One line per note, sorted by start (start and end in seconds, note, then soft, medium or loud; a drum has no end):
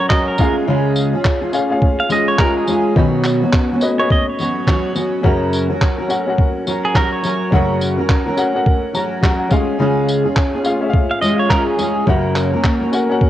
0.00 0.38 C#4 medium
0.00 0.41 F#4 medium
0.00 0.10 A#4 medium
0.00 0.41 A#4 medium
0.00 0.41 F#5 loud
0.09 0.38 F#3 medium
0.09 0.38 C#4 medium
0.09 0.39 F#4 medium
0.09 0.39 A#4 medium
0.09 0.26 D#5 medium
0.09 kick loud
0.09 clap loud
0.27 0.55 A#4 medium
0.38 0.66 G#3 medium
0.38 1.46 C#4 medium
0.38 0.66 C#4 medium
0.38 1.46 F4 medium
0.38 0.67 F4 medium
0.38 1.46 G#4 medium
0.38 0.67 G#4 medium
0.38 1.47 F5 medium
0.38 kick loud
0.38 tambourine medium
0.67 1.13 C#3 medium
0.67 1.13 G#3 medium
0.67 1.13 C#4 loud
0.67 1.13 F4 medium
0.67 1.12 G#4 medium
0.96 tambourine medium
1.13 1.41 C#4 medium
1.13 1.41 F4 medium
1.13 1.40 G#4 medium
1.25 kick loud
1.25 clap loud
1.41 2.10 C#4 medium
1.41 2.09 F4 medium
1.41 2.10 G#4 medium
1.53 1.68 C#4 medium
1.53 1.69 F4 medium
1.53 1.69 G#4 medium
1.53 1.70 F5 medium
1.53 tambourine medium
1.70 2.73 C#4 medium
1.70 2.74 F4 medium
1.70 2.74 G#4 medium
1.70 2.74 F5 loud
1.82 kick loud
2.00 2.10 F5 medium
2.09 2.38 G#3 medium
2.09 2.38 C#4 medium
2.09 2.39 F4 medium
2.09 2.39 G#4 medium
2.09 2.28 D#5 medium
2.09 tambourine medium
2.28 2.39 C#5 medium
2.39 2.66 G#3 medium
2.39 2.67 C#4 medium
2.39 2.68 F4 medium
2.39 2.68 G#4 medium
2.39 2.55 A#4 medium
2.39 kick loud
2.39 clap loud
2.57 2.95 G#4 medium
2.67 2.96 G#3 medium
2.67 2.96 C#4 medium
2.67 2.97 F4 medium
2.67 2.97 G#4 medium
2.67 tambourine medium
2.96 3.42 B2 medium
2.96 3.42 D#3 medium
2.96 3.42 F#3 medium
2.96 3.42 B3 medium
2.96 3.76 C#4 medium
2.96 3.41 C#4 medium
2.96 3.76 F#4 medium
2.96 3.40 F#4 loud
2.96 3.76 B4 medium
2.96 3.77 D#5 medium
2.96 kick loud
3.24 clap medium
3.24 tambourine medium
3.42 3.71 F#3 soft
3.42 3.71 B3 medium
3.42 3.71 C#4 medium
3.42 3.70 F#4 medium
3.53 kick loud
3.53 clap loud
3.71 4.39 F#3 medium
3.71 4.38 B3 medium
3.71 4.40 C#4 medium
3.71 4.40 F#4 medium
3.80 3.97 C#4 medium
3.80 3.97 F#4 medium
3.80 3.98 B4 medium
3.80 3.98 D#5 medium
3.80 tambourine medium
3.98 5.02 C#4 medium
3.98 5.02 F#4 medium
3.98 5.02 B4 medium
3.98 4.10 C#5 medium
3.98 5.03 D#5 medium
4.10 4.27 D#5 medium
4.10 kick loud
4.29 5.10 C#5 medium
4.39 4.66 F#3 medium
4.39 4.67 B3 medium
4.39 4.67 C#4 medium
4.39 4.68 F#4 medium
4.39 tambourine medium
4.67 4.93 F#3 medium
4.67 4.94 B3 medium
4.67 4.95 C#4 medium
4.67 4.95 F#4 medium
4.67 kick loud
4.67 clap loud
4.95 5.22 F#3 medium
4.95 5.23 B3 medium
4.95 5.22 C#4 medium
4.95 5.23 F#4 medium
4.95 tambourine medium
5.22 5.69 F#2 medium
5.22 5.70 C#3 medium
5.22 5.70 F#3 medium
5.22 6.04 C#4 medium
5.22 5.69 C#4 medium
5.22 6.04 F#4 medium
5.22 5.69 F#4 medium
5.22 6.04 A#4 medium
5.22 5.68 A#4 loud
5.22 6.05 F#5 medium
5.22 kick loud
5.53 tambourine medium
5.69 5.98 F#3 soft
5.69 5.98 C#4 medium
5.69 5.98 F#4 medium
5.69 5.97 A#4 medium
5.81 kick loud
5.81 clap loud
5.98 6.66 F#3 soft
5.98 6.67 C#4 medium
5.98 6.67 F#4 medium
5.98 6.67 A#4 medium
6.08 6.25 C#4 medium
6.08 6.25 F#4 medium
6.08 6.26 A#4 medium
6.08 6.26 F#5 medium
6.08 tambourine medium
6.27 7.30 C#4 medium
6.27 7.30 F#4 medium
6.27 7.31 A#4 medium
6.27 7.31 F#5 medium
6.38 kick loud
6.67 6.94 F#3 medium
6.67 6.95 C#4 medium
6.67 6.95 F#4 medium
6.67 6.96 A#4 medium
6.67 tambourine medium
6.85 6.95 G#4 medium
6.95 7.23 F#3 medium
6.95 7.23 C#4 medium
6.95 7.24 F#4 medium
6.95 7.12 A#4 medium
6.95 7.25 A#4 medium
6.95 kick loud
6.95 clap loud
7.12 7.50 C#5 medium
7.24 7.51 F#3 medium
7.24 7.51 C#4 medium
7.24 7.52 F#4 medium
7.24 7.52 A#4 medium
7.24 tambourine medium
7.51 7.98 F#2 medium
7.51 7.98 C#3 medium
7.51 7.98 F#3 medium
7.51 8.31 C#4 medium
7.51 7.98 C#4 loud
7.51 8.32 F#4 medium
7.51 7.97 F#4 loud
7.51 8.32 A#4 medium
7.51 7.96 A#4 medium
7.51 8.33 F#5 loud
7.51 kick loud
7.81 tambourine medium
7.97 8.27 F#3 medium
7.97 8.26 C#4 medium
7.97 8.25 F#4 medium
7.97 8.25 A#4 medium
8.09 kick loud
8.09 clap loud
8.26 8.93 F#3 medium
8.26 8.94 C#4 medium
8.26 8.94 F#4 medium
8.26 8.94 A#4 medium
8.37 8.52 C#4 medium
8.37 8.53 F#4 medium
8.37 8.54 A#4 medium
8.37 8.54 F#5 loud
8.37 tambourine medium
8.54 9.48 C#4 medium
8.54 9.51 F#4 medium
8.54 9.52 A#4 medium
8.54 9.21 F#5 loud
8.66 kick loud
8.94 9.21 F#3 medium
8.94 9.23 C#4 medium
8.94 9.23 F#4 medium
8.94 9.24 A#4 medium
8.94 9.21 A#5 medium
8.94 tambourine medium
9.22 9.50 F#3 medium
9.22 9.50 C#4 medium
9.22 9.51 F#4 medium
9.22 9.52 A#4 medium
9.22 9.37 F#5 medium
9.22 kick loud
9.22 clap loud
9.39 9.50 F#5 medium
9.49 9.79 G#3 medium
9.49 10.57 C#4 medium
9.49 9.78 C#4 medium
9.49 10.57 F4 medium
9.49 9.79 F4 medium
9.49 10.57 G#4 medium
9.49 9.79 G#4 medium
9.49 9.77 D#5 medium
9.49 10.58 F5 medium
9.49 kick medium
9.49 tambourine medium
9.79 10.25 C#3 medium
9.79 10.25 G#3 medium
9.79 10.25 C#4 medium
9.79 10.24 F4 medium
9.79 10.23 G#4 loud
10.09 tambourine medium
10.24 10.54 C#4 medium
10.24 10.53 F4 medium
10.24 10.52 G#4 medium
10.36 kick loud
10.36 clap loud
10.54 11.22 C#4 soft
10.54 11.21 F4 medium
10.54 11.22 G#4 medium
10.64 10.79 C#4 medium
10.64 10.80 F4 medium
10.64 10.81 G#4 medium
10.64 10.81 F5 medium
10.64 tambourine medium
10.81 11.84 C#4 medium
10.81 11.84 F4 medium
10.81 11.85 G#4 medium
10.81 10.88 E5 medium
10.90 11.89 F5 loud
10.90 kick loud
11.11 11.21 F5 medium
11.21 11.48 G#3 medium
11.21 11.49 C#4 medium
11.21 11.50 F4 medium
11.21 11.50 G#4 medium
11.21 11.38 D#5 medium
11.21 tambourine medium
11.39 11.50 C#5 medium
11.50 11.77 G#3 medium
11.50 11.78 C#4 medium
11.50 11.79 F4 medium
11.50 11.79 G#4 medium
11.50 11.66 A#4 medium
11.50 kick loud
11.50 clap loud
11.67 12.05 G#4 medium
11.78 12.06 G#3 medium
11.78 12.06 C#4 medium
11.78 12.07 F4 medium
11.78 12.07 G#4 medium
11.78 tambourine medium
12.06 12.52 F#2 medium
12.06 12.52 C#3 medium
12.06 12.52 F#3 medium
12.06 12.53 A#3 medium
12.06 12.87 C#4 medium
12.06 12.52 C#4 medium
12.06 12.87 F#4 medium
12.06 12.52 A#4 medium
12.06 12.88 A#4 medium
12.06 12.88 F#5 medium
12.06 kick loud
12.36 clap medium
12.36 tambourine medium
12.53 12.81 F#3 medium
12.53 12.80 A#3 medium
12.53 12.80 C#4 medium
12.53 12.79 A#4 medium
12.64 kick loud
12.64 clap loud
12.80 13.30 F#3 soft
12.80 13.30 A#3 soft
12.80 13.30 C#4 medium
12.80 13.30 A#4 medium
12.92 13.08 C#4 medium
12.92 13.08 F#4 medium
12.92 13.08 A#4 medium
12.92 13.09 F#5 medium
12.92 tambourine medium
13.09 13.30 C#4 medium
13.09 13.30 F#4 medium
13.09 13.30 A#4 medium
13.09 13.30 F#5 loud
13.21 kick loud